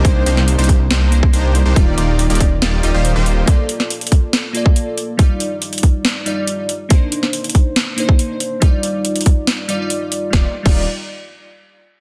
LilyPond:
<<
  \new Staff \with { instrumentName = "Supersaw synth" } { \time 4/4 \key ees \lydian \tempo 4 = 140 <bes ees' g' c''>8 <bes d' ees' g' c''>8. <bes d' ees' g' c''>16 r8 <bes d' ees' g' c''>8 r8 <bes d' ees' g' c''>8. <bes d' ees' g' c''>16 | <bes ees' f' g' d''>8 <bes ees' f' g' d''>8. <bes ees' f' g' d''>16 r8 <bes ees' f' g' d''>8 <bes ees' f' g' ees''>16 <bes ees' f' g' c''>8 <bes ees' f' g' c''>8. | r1 | r1 |
r1 | r1 | <bes ees' f' g' d''>16 r8 <bes ees' f' g' d''>8 r2 r8. | }
  \new Staff \with { instrumentName = "Synth keys" } { \time 4/4 \key ees \lydian <bes d' ees' c''>2~ <bes d' ees' c''>8 <bes d' ees' c''>4. | <g ees' f' d''>2~ <g ees' f' d''>8 <g ees' f' d''>16 <g ees' f' d''>4~ <g ees' f' d''>16 | <bes f' a' d''>2~ <bes f' a' d''>8 <bes f' a' d''>4. | <g ees' f' d''>2~ <g ees' f' d''>8 <g ees' f' d''>4 r8 |
<bes d' ees' c''>2~ <bes d' ees' c''>8 <bes d' ees' c''>4. | <g ees' f' d''>2~ <g ees' f' d''>8 <g ees' f' d''>16 <g ees' f' d''>4~ <g ees' f' d''>16 | <g ees' f' d''>16 r8 <g ees' f' d''>8 r2 r8. | }
  \new Staff \with { instrumentName = "Detuned saw bass" } { \clef bass \time 4/4 \key ees \lydian c,8 c,8. c,8. c,4 c,8. c,16 | ees,,8 ees,,8. ees,,8. ees,,8 ees,,16 ees,,8 ees,,8. | r1 | r1 |
r1 | r1 | ees,,16 r8 ees,,8 r2 r8. | }
  \new DrumStaff \with { instrumentName = "Drums" } \drummode { \time 4/4 <hh bd>8 hh16 sn16 hh16 hh32 hh32 <hh bd>8 <hh sn>8 hh16 bd16 hh8 hh8 | <hh bd>8 hh8 hh16 hh32 hh32 <hh bd>8 <hh sn>8 hh8 hh8 hh8 | <hh bd>8 hh16 sn16 hh16 hh32 hh32 <hh bd>8 <hh sn>8 hh16 bd16 hh8 hh8 | <hh bd>8 hh8 hh16 hh32 hh32 <hh bd>8 <hh sn>8 hh8 hh8 hh8 |
<hh bd>8 hh16 sn16 hh16 hh32 hh32 <hh bd>8 <hh sn>8 hh16 bd16 hh8 hh8 | <hh bd>8 hh8 hh16 hh32 hh32 <hh bd>8 <hh sn>8 hh8 hh8 hh8 | <bd sn>8. <cymc bd>16 r4 r4 r4 | }
>>